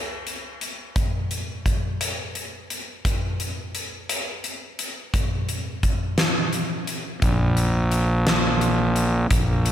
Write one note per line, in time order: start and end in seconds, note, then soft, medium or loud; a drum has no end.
0.27 closed hi-hat soft
0.61 closed hi-hat soft
0.96 kick medium
0.96 closed hi-hat soft
1.31 closed hi-hat soft
1.66 kick soft
1.66 closed hi-hat soft
2.01 closed hi-hat medium
2.35 closed hi-hat soft
2.70 closed hi-hat soft
3.05 kick medium
3.05 closed hi-hat medium
3.40 closed hi-hat soft
3.75 closed hi-hat soft
4.09 closed hi-hat medium
4.44 closed hi-hat soft
4.79 closed hi-hat soft
5.14 kick medium
5.14 closed hi-hat medium
5.49 closed hi-hat soft
5.83 kick medium
5.83 closed hi-hat soft
6.18 snare medium
6.18 closed hi-hat medium
6.53 closed hi-hat soft
6.87 closed hi-hat soft
7.22 9.27 A#1 medium
7.22 kick medium
7.22 closed hi-hat medium
7.57 closed hi-hat soft
7.92 closed hi-hat soft
8.27 snare medium
8.27 closed hi-hat medium
8.61 closed hi-hat soft
8.96 closed hi-hat soft
9.31 9.72 A#1 medium
9.31 kick medium
9.31 closed hi-hat medium
9.66 closed hi-hat medium